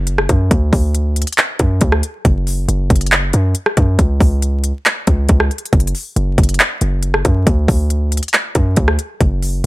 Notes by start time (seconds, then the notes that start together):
Already playing: F#1
0.07 closed hi-hat
0.18 cross-stick
0.29 F#2, kick, closed hi-hat
0.51 D2, kick, closed hi-hat
0.73 D2, kick, open hi-hat
0.95 closed hi-hat
1.16 closed hi-hat
1.22 closed hi-hat
1.27 closed hi-hat
1.33 closed hi-hat
1.38 clap, closed hi-hat
1.59 F#2, kick, closed hi-hat
1.81 D2, kick, closed hi-hat
1.92 cross-stick
2.03 closed hi-hat
2.25 F#1, kick, closed hi-hat
2.47 open hi-hat
2.68 F#1, closed hi-hat
2.90 F#1, kick, closed hi-hat
2.96 closed hi-hat
3.01 closed hi-hat
3.06 closed hi-hat
3.12 clap, closed hi-hat
3.33 F#2, closed hi-hat
3.55 closed hi-hat
3.66 cross-stick
3.77 F#2, kick, closed hi-hat
3.99 C#2, kick, closed hi-hat
4.20 C#2, kick, open hi-hat
4.42 closed hi-hat
4.64 closed hi-hat
4.86 clap, closed hi-hat
5.07 C#2, kick, closed hi-hat
5.29 C#2, kick, closed hi-hat
5.40 cross-stick
5.51 closed hi-hat
5.58 closed hi-hat
5.65 closed hi-hat
5.73 F#1, kick, closed hi-hat
5.80 closed hi-hat
5.87 closed hi-hat
5.95 open hi-hat
6.16 F#1, closed hi-hat
6.38 F#1, kick, closed hi-hat
6.43 closed hi-hat
6.49 closed hi-hat
6.54 closed hi-hat
6.60 clap, closed hi-hat
6.81 F#1, closed hi-hat
7.03 closed hi-hat
7.14 cross-stick
7.25 F#2, kick, closed hi-hat
7.47 D2, kick, closed hi-hat
7.68 D2, kick, open hi-hat
7.90 closed hi-hat
8.12 closed hi-hat
8.17 closed hi-hat
8.23 closed hi-hat
8.28 closed hi-hat
8.34 clap, closed hi-hat
8.55 F#2, kick, closed hi-hat
8.76 D2, kick, closed hi-hat
8.88 cross-stick
8.99 closed hi-hat
9.21 F#1, kick, closed hi-hat
9.42 open hi-hat